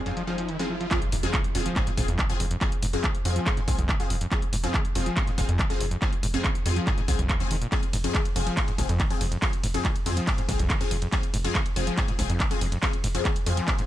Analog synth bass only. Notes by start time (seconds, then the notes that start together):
Already playing: F1
1.12 F1
1.55 F1
1.98 F1
2.08 F2
2.40 F1
2.83 F1
3.25 F2
3.68 C2
3.79 C2
4.10 F1
4.53 F1
4.95 F1
5.38 F1
5.49 F2
5.80 F1
6.23 F1
6.66 F2
7.08 C2
7.19 C2
7.51 F1
7.93 F1
8.36 F1
8.78 F1
8.89 F2
9.21 F1
9.63 F1
10.06 F2
10.49 C2
10.59 C2
10.91 F1
11.34 F1
11.76 F1
12.19 F1
12.30 F2
12.61 F1
13.04 F1
13.46 F2